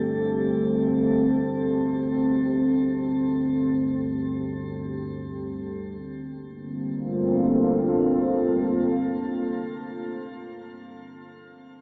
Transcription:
Already playing: G1 D2 G2 A3 C4 G4 A4
6.01 G1 D2 G2
6.17 A#3
6.33 C4
6.50 F4
6.65 A4

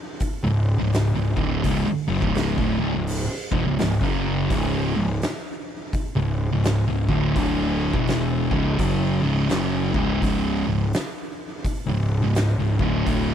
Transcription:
0.20 kick, open hi-hat
0.44 C#1 C#2 G#2
0.79 C#1 C#2 G#2
0.93 snare, open hi-hat
1.15 C#1 C#2 G#2
1.36 D1 D2 A2 D3, kick
1.64 C#1 C#2 G#2, kick, open hi-hat
1.87 muted distorted electric guitar stroke, muted picked electric bass stroke
2.08 F#1 F#2 C#3
2.22 C#1 C#2 G#2 C#3, kick
2.35 snare, open hi-hat
2.57 D1 D2 A2, kick
2.79 C#1 C#2 G#2
2.94 C#1 C#2 G#2
3.07 open hi-hat
3.51 E1 E2 B2, kick
3.66 C#1 C#2 G#2
3.79 C#1 C#2 G#2, snare, open hi-hat
4.01 F#1 F#2 C#3 F#3, kick
4.50 C#1 C#2 G#2 C#3, kick, open hi-hat
4.96 C#1 C#2 G#2
5.22 snare, open hi-hat
5.93 kick, open hi-hat
6.16 C#1 C#2 G#2
6.51 C#1 C#2 G#2
6.64 snare, open hi-hat
6.87 C#1 C#2 G#2
7.09 D1 D2 A2 D3, kick
7.36 D1 D2 A2 D3, kick, open hi-hat
7.93 E1 E2 B2 E3, kick
8.07 snare, open hi-hat
8.51 C#1 C#2 G#2 C#3, kick
8.79 F#1 F#2 C#3 F#3, kick, open hi-hat
9.22 C#1 C#2 G#2 C#3
9.49 F#1 F#2 C#3 F#3, snare, open hi-hat
9.94 C#1 C#2 G#2 C#3, kick
10.22 C#1 C#2 G#2 C#3, kick, open hi-hat
10.66 C#1 C#2 G#2
10.93 snare, open hi-hat
11.65 kick, open hi-hat
11.86 C#1 C#2 G#2
12.22 C#1 C#2 G#2
12.35 snare, open hi-hat
12.58 C#1 C#2 G#2
12.79 D1 D2 A2 D3, kick
13.06 D1 D2 A2 D3, kick, open hi-hat

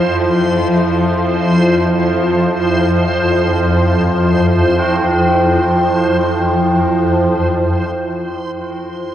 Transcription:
Already playing: F2 F3 E4 F4 C5
4.79 C4
7.98 F2 F3

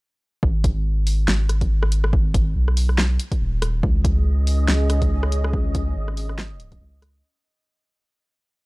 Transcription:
0.43 G#1, kick
0.64 kick, closed hi-hat
1.07 open hi-hat
1.28 G#1, snare
1.49 cross-stick, closed hi-hat
1.61 kick, closed hi-hat
1.83 cross-stick
1.92 closed hi-hat
2.04 cross-stick
2.13 kick
2.34 kick, closed hi-hat
2.55 B1
2.68 cross-stick
2.77 open hi-hat
2.89 cross-stick
2.98 snare
3.19 closed hi-hat
3.32 kick, closed hi-hat
3.41 D#1
3.62 cross-stick, closed hi-hat
3.83 C#2 C#4 G#4 D#5, kick
4.05 kick, closed hi-hat
4.47 open hi-hat
4.68 C#2, snare
4.90 cross-stick, closed hi-hat
5.02 kick, closed hi-hat
5.23 cross-stick
5.32 closed hi-hat
5.44 cross-stick
5.53 kick
5.75 kick, closed hi-hat
5.96 G#1
6.08 cross-stick
6.17 open hi-hat
6.29 cross-stick
6.38 snare
6.60 closed hi-hat
6.72 kick, closed hi-hat
6.81 C#2
7.02 cross-stick, closed hi-hat

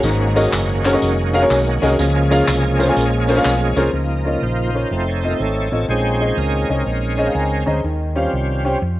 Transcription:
Already playing: A#3 F#4
0.03 G#1 G#2 D#3 G#3 C#4, tambourine
0.36 C#4 F#4 G#4 A#4 D#5, tambourine
0.52 F#1, clap, tambourine
0.85 C#4 F#4 G#4 A#4 C#5, clap, tambourine
0.93 C#4 F#4 G#4 A#4 D#5
1.01 F1, tambourine
1.33 C#4 F#4 G#4 A#4 F5, tambourine
1.41 C#4 F#4 G#4 A#4 C#5
1.50 B1, clap, tambourine
1.81 C2 C#4 F#4 G#4 A#4 D#5, tambourine
1.99 C#2 C#3 F3 A#3 C#4 G#4, tambourine
2.31 C#4 F4 G#4 A#4 F5, tambourine
2.48 C2, clap, tambourine
2.79 C#4 F4 G#4 A#4 C5, tambourine
2.88 C#4 F4 G#4 A#4 G#5
2.96 A#1, tambourine
3.28 C#4 F4 G#4 A#4 C5, tambourine
3.37 C#4 F4 G#4 A#4 F5
3.45 B1, clap, tambourine
3.77 C2 C#4 F4 G#4 A#4 C5, tambourine
3.93 C#2 C#3 F3 A#3 D#4
4.25 C#4 F4 A#4 D#5
4.42 A#1 D#4 F4 C5
4.74 C#4 F4 A#4 C#5
4.91 F1 A3 C4 D#4
5.07 C#5
5.20 C4 F4 A4 C5
5.25 A#4 D#5
5.36 C5
5.40 G#1 A4 C#5
5.72 A1 C4 F4 A4 D#5
5.88 A#1 A#2 G#3 C4 C#4 D#4 G#4 C5
6.20 C#4 G#4 C5 D#5
6.37 C#2 C#4 D#4 A#4
6.70 C2 C#4 G#4 C5 D#5
6.87 A#1
7.18 C#4 G#4 C5 D#5
7.27 F5
7.35 C#2 G#5
7.66 D2 C#4 G#4 C5 D#5 A#5
7.84 D#2 D#3
8.16 G3 C4 C#4 F4 G4 C5 F5
8.33 C2
8.65 C#4 G4 C5 G5
8.82 F2

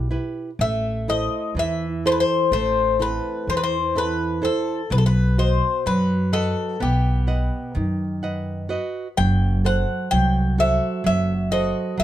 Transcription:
Already playing: B1 G4 B4
0.11 E4 G4 B4
0.59 A1 A3 E5
1.08 E4 A4 C5 D#5
1.55 E2 E3
1.59 E5
2.06 E4 A4 C5
2.12 B4
2.20 C5
2.51 A1 A3 C5
3.00 C4 E4 A4 B4
3.47 E2 E3 C5
3.57 B4
3.63 C5
3.96 C4 E4 A4 B4
4.42 E4 A4 C5
4.90 B1 B2 B4
4.98 A4
5.06 B4
5.38 F#4 C5 D#5
5.86 F#2 F#3 B4
6.33 A4 B4 D#5 F#5
6.80 B1 B3 G4
7.27 B4 D#5 F#5
7.75 F#2 D#3
8.23 B4 D#5 F#5
8.69 F#4 B4 D#5
9.17 F#1 F#3 G5
9.65 A4 C5 F#5
10.11 C2 F#3 G5
10.58 F#4 A4 C5 E5
11.04 F#1 F#3 E5
11.51 F#4 A4 C5 D#5
11.98 C2 F#3 E5

